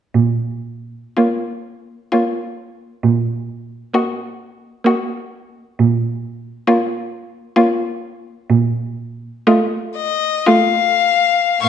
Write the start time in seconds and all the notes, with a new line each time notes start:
0.15 A#2
1.17 A#3 F4 C#5
2.12 A#3 F4 C#5
3.03 A#2
3.94 A#3 F#4 D#5
4.85 A#3 F#4 D#5
5.79 A#2
6.67 A#3 F4 C#5
7.56 A#3 F4 C#5
8.49 A#2
9.47 A3 F4 D#5
9.97 D#5
10.47 A3 F4 F5
11.63 A#2 A#3 F5 C#6